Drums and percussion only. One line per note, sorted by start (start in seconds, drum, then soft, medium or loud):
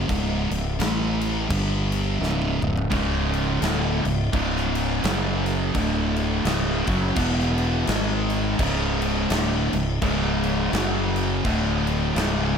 0.09 kick loud
0.09 crash medium
0.51 crash medium
0.80 snare loud
0.80 crash medium
1.21 crash medium
1.50 kick loud
1.50 crash medium
1.92 crash medium
2.23 snare medium
2.42 high tom medium
2.62 mid tom medium
2.77 floor tom loud
2.91 kick loud
2.91 crash medium
3.34 crash medium
3.62 snare loud
3.62 crash medium
4.05 crash medium
4.33 kick loud
4.33 crash medium
4.57 snare soft
4.75 crash medium
5.04 snare loud
5.04 crash medium
5.46 crash medium
5.75 kick loud
5.75 crash medium
6.16 crash medium
6.45 snare loud
6.45 crash medium
6.87 kick loud
6.87 crash medium
7.16 kick loud
7.16 crash medium
7.40 snare soft
7.58 crash medium
7.87 snare loud
7.87 crash medium
8.30 crash medium
8.59 kick loud
8.59 crash medium
9.02 crash medium
9.30 snare loud
9.30 crash medium
9.73 crash medium
10.02 kick loud
10.02 crash medium
10.44 crash medium
10.73 snare loud
10.73 crash medium
11.16 crash medium
11.45 kick loud
11.45 crash medium
11.87 crash medium
12.16 snare loud
12.16 crash medium